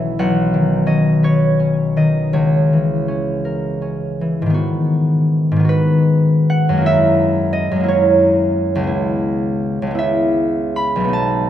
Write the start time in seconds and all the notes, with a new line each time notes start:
Already playing: B1 E3 C#4 A4 C#5 E5 F#5
0.19 B1 F#5
0.54 D#3
0.86 C#4 D#5
1.23 B4 C#5
1.60 C#4
1.97 D#3 D#5
2.33 C#2 C#5
2.73 E3
3.08 C#4
3.45 A#4
3.82 C#4
4.21 E3
4.42 G#2
4.46 D#3 B3
4.54 F#4
5.52 G#2
5.56 D#3 B3
5.65 F#4
5.69 B4
6.50 F#5
6.69 F#2 G#3
6.77 A#3
6.81 E4
6.86 E5
7.53 D#5
7.71 F#2
7.76 G#3
7.80 A#3 E4
7.88 C#5
8.75 C#2
8.80 G#3 B3
8.87 E4
9.82 C#2
9.87 G#3 B3
9.95 E4
9.99 E5
10.76 B5
10.96 B1
11.00 A3 B3
11.08 D#4
11.13 A5